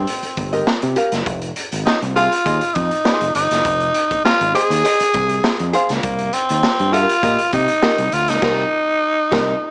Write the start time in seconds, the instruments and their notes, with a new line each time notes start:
Already playing: tenor saxophone C4
0.07 closed hi-hat
0.23 muted fingered electric bass stroke, closed hi-hat
0.37 fingered electric bass G1, kick, closed hi-hat
0.53 hollow-body jazz guitar G4 A#4 D#5, closed hi-hat
0.67 snare
0.82 fingered electric bass C3, closed hi-hat
0.96 hollow-body jazz guitar G4 A#4 F5, closed hi-hat
1.12 fingered electric bass F#1, snare, closed hi-hat
1.26 fingered electric bass F1, kick, closed hi-hat
1.42 closed hi-hat
1.56 closed hi-hat
1.72 fingered electric bass G#1, closed hi-hat
1.86 tenor saxophone D#4, muted fingered electric bass stroke, snare
2.02 fingered electric bass C2, closed hi-hat
2.16 tenor saxophone F4, hollow-body jazz guitar G#4 C5 F5, closed hi-hat
2.32 closed hi-hat
2.46 fingered electric bass D#2, hollow-body jazz guitar G#4 C5 D#5, kick, closed hi-hat
2.61 closed hi-hat
2.75 fingered electric bass F2, tenor saxophone D#4, kick, closed hi-hat
2.91 closed hi-hat
3.05 hollow-body jazz guitar G#4 C5 D#5, snare
3.21 fingered electric bass F1, closed hi-hat
3.35 fingered electric bass G1, tenor saxophone D#4, closed hi-hat
3.51 fingered electric bass F#1, snare, closed hi-hat
3.65 fingered electric bass F1, kick, closed hi-hat
3.80 closed hi-hat
3.94 closed hi-hat
4.11 muted fingered electric bass stroke, kick, closed hi-hat
4.24 tenor saxophone F4, muted fingered electric bass stroke, snare
4.41 fingered electric bass G#1, closed hi-hat
4.55 hollow-body jazz guitar G#4 C5 D#5, tenor saxophone G#4, closed hi-hat
4.70 fingered electric bass D#2, closed hi-hat
4.84 hollow-body jazz guitar G#4 C5 D#5, closed hi-hat
5.00 muted fingered electric bass stroke, closed hi-hat
5.14 fingered electric bass C2, kick, closed hi-hat
5.29 closed hi-hat
5.44 snare
5.59 fingered electric bass F2, closed hi-hat
5.73 hollow-body jazz guitar G#4 C5 F5, closed hi-hat
5.89 fingered electric bass C#2, snare, closed hi-hat
6.03 fingered electric bass C2, tenor saxophone A#3, kick, closed hi-hat
6.19 closed hi-hat
6.33 tenor saxophone C4, closed hi-hat
6.49 fingered electric bass D#2, closed hi-hat
6.63 muted fingered electric bass stroke, snare
6.79 fingered electric bass G2, closed hi-hat
6.93 tenor saxophone F4, hollow-body jazz guitar G4 A#4 F5, closed hi-hat
7.09 closed hi-hat
7.23 fingered electric bass A#2, hollow-body jazz guitar G4 A#4 D#5, kick, closed hi-hat
7.39 closed hi-hat
7.53 fingered electric bass C3, tenor saxophone D#4, kick, closed hi-hat
7.68 closed hi-hat
7.83 hollow-body jazz guitar G4 A#4 D#5, snare
7.98 fingered electric bass C2, closed hi-hat
8.12 fingered electric bass D2, tenor saxophone F4, closed hi-hat
8.28 fingered electric bass C#2, tenor saxophone D#4, snare, closed hi-hat
8.42 fingered electric bass C2, hollow-body jazz guitar G4 A#4 D#5, kick, snare, crash
9.32 fingered electric bass C2, hollow-body jazz guitar G4 A#4 D#5, kick, snare